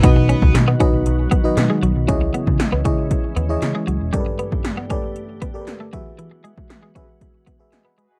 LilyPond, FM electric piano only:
\new Staff \with { instrumentName = "FM electric piano" } { \time 4/4 \key b \major \tempo 4 = 117 << { b,4. r2 r8 | cis4. r2 r8 | g,4. r2 e8~ | e4 r2 <dis'' gis''>16 <fis'' b''>8 <dis'' gis''>16 | } \\ { <dis' fis' b' dis''>4 r8 <dis' fis' b' dis''>8. r8 <dis' fis' b' dis''>8. r8 | <e' gis' cis'' dis''>4 r8 <e' gis' cis'' dis''>8. r8 <e' gis' cis'' dis''>8. r8 | <g' a' ais' b' d''>4 r8 <g' a' b' d''>8. r8 <g' a' ais' b' d''>8. <fis' gis' b' e''>8~ | <fis' gis' b' e''>4 r8 <fis' gis' b' e''>8. r8 <fis' gis' b' e''>8. r8 | } >> }